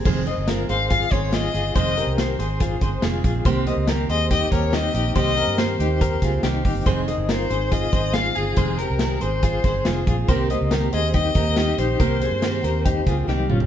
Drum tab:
CC |x---------------|----------------|----------------|----------------|
HH |--x-x-x-x-x-x-x-|x-x-x-x-x-x-x-x-|x-x-x-x-x-x-x-x-|x-x-x-x-x-x-x-o-|
SD |----o-----o-o---|----o-----o-o---|----o-----o-o---|----o-----o-o---|
T1 |----------------|----------------|----------------|----------------|
T2 |----------------|----------------|----------------|----------------|
FT |----------------|----------------|----------------|----------------|
BD |o-------o-o-----|o-------o-o---o-|o-------o-o-----|o-------o-o---o-|

CC |----------------|----------------|----------------|----------------|
HH |x-x-x-x-x-x-x-x-|x-x-x-x-x-x-x-x-|x-x-x-x-x-x-x-x-|x-x-x-x-x-x-----|
SD |----o-------o---|----o-----o-o---|----o-----o-o---|----o-----o-o---|
T1 |----------------|----------------|----------------|-------------o--|
T2 |----------------|----------------|----------------|--------------o-|
FT |----------------|----------------|----------------|---------------o|
BD |o-------o-o-----|o-------o-o---o-|o-------o-o-----|o-------o-o-----|